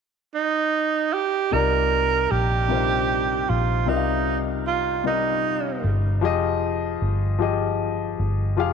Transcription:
0.35 D#4
1.13 G4
1.51 C2 C3 G3 D#4 F4 A#4 D5
2.31 A#1 G4
2.68 C3 G3 D4 F4 A#4 C5
2.76 D#4
3.49 A#1 F4
3.86 C2 C3 G3 D#4 F4 A#4 E5
3.96 F5
4.67 F4
5.03 C3 G3 D#4 F4 A#4 D#5
5.45 A#1
5.84 G1
6.21 F1 F3 F4 G4 G#4 D#5
7.02 G1
7.39 F3 F4 G4 G#4 D#5
8.19 G1
8.57 F1 F3 F4 G4 G#4 F5

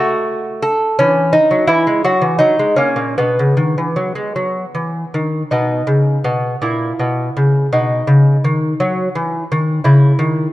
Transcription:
Already playing: A3 F#4
0.62 A4
0.99 E3 C#4
1.33 D#4
1.51 F#3
1.67 E3 E4
1.87 G#3
2.04 F#3 F#4
2.22 E3
2.39 F#3 D#4
2.59 G#3
2.76 A#3 C#4
2.96 A#2
3.18 B2 B3
3.39 C#3
3.57 D#3
3.78 E3
3.96 F#3
4.15 G#3
4.36 F#3
4.75 E3
5.14 D#3
5.51 B2 D#4
5.87 C#3
6.24 B2
6.62 A#2 E4
6.99 B2
7.37 C#3
7.73 B2 D#4
8.07 C#3
8.44 D#3
8.80 F#3
9.15 E3
9.52 D#3
9.84 C#3 E4
10.19 D#3

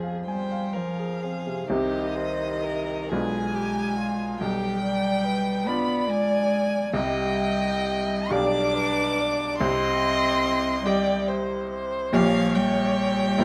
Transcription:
Already playing: F2 F3 C4 F4 G#4 C5
0.03 F5
0.26 G3 C5 G5 G#5
0.52 F5
0.73 F3 A#4 C5 F5
0.99 G#4
1.22 C4 G#4
1.47 C3
1.67 C2 C3 D#3 C4 D#4 G4 D#5
2.15 C5
2.62 A#4
3.09 B1 B2 G#3 D4 F4 G#4 G#5
3.13 B4
3.54 G4
3.98 F4
4.40 B1 B2 G3 G4 G5
4.82 D5
5.24 B4
5.67 B3 D4 F4 D5 B5
6.09 G#3 G#5
6.92 C2 C3 G3 G4 D#5 G5
8.30 B1 B2 G3 D4 G4 D5 F5 D6
8.75 B4
9.19 D5
9.58 C2 C3 C4 D#5 C6
10.85 G3 G4 D5 D#5 G5
11.27 C5
11.69 C5
12.12 A#1 A#2 F3 G3 G4 C#5 F5
12.54 G3 G5
13.38 A#1 A#2 G3 E4 A#4 C5

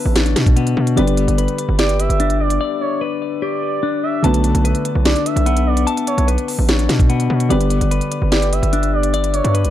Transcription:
Already playing: D3 A3 B3 D4 F#4 B4 A5
0.06 A1
0.16 D4, snare, closed hi-hat
0.26 closed hi-hat
0.36 B2, snare, closed hi-hat
0.46 kick, closed hi-hat
0.56 B3, closed hi-hat
0.67 closed hi-hat
0.77 B2
0.87 closed hi-hat
0.96 G1 D3 G3 B3 G4 B4 D5, closed hi-hat
1.08 closed hi-hat
1.17 closed hi-hat
1.28 G1, closed hi-hat
1.38 B4, closed hi-hat
1.48 closed hi-hat
1.58 closed hi-hat
1.69 G1
1.79 G4 D5, snare, closed hi-hat
1.89 closed hi-hat
2.00 E5, closed hi-hat
2.10 G1, closed hi-hat
2.20 D4, closed hi-hat
2.30 closed hi-hat
2.40 D5
2.50 closed hi-hat
2.61 D5
2.81 C#5
3.01 B4
3.42 G4 D5
3.83 D4
4.04 E5
4.22 B1 D3 A3 B3 F#4 B4 A5, closed hi-hat
4.34 closed hi-hat
4.44 closed hi-hat
4.55 B1, closed hi-hat
4.65 B4, closed hi-hat
4.75 closed hi-hat
4.85 closed hi-hat
4.95 B1
5.05 D4 D5, snare, closed hi-hat
5.16 closed hi-hat
5.26 E5, closed hi-hat
5.36 B1, closed hi-hat
5.46 B3, closed hi-hat
5.57 closed hi-hat
5.67 D5
5.77 closed hi-hat
5.87 A5, closed hi-hat
5.97 closed hi-hat
6.07 C#5, closed hi-hat
6.18 B1, closed hi-hat
6.28 B4, closed hi-hat
6.38 closed hi-hat
6.48 open hi-hat
6.59 A1
6.69 D4, snare, closed hi-hat
6.79 closed hi-hat
6.89 B2, snare, closed hi-hat
6.99 kick, closed hi-hat
7.09 B3, closed hi-hat
7.20 closed hi-hat
7.30 B2
7.40 closed hi-hat
7.49 G1 D3 G3 B3 G4 B4 D5, closed hi-hat
7.61 closed hi-hat
7.70 closed hi-hat
7.81 G1, closed hi-hat
7.91 B4, closed hi-hat
8.01 closed hi-hat
8.12 closed hi-hat
8.22 G1
8.32 G4 D5, snare, closed hi-hat
8.42 closed hi-hat
8.53 E5, closed hi-hat
8.63 G1, closed hi-hat
8.73 D4, closed hi-hat
8.83 closed hi-hat
8.93 D5
9.03 closed hi-hat
9.14 D5, closed hi-hat
9.24 closed hi-hat
9.34 C#5, closed hi-hat
9.44 G2, closed hi-hat
9.54 B4, closed hi-hat
9.65 B1, closed hi-hat

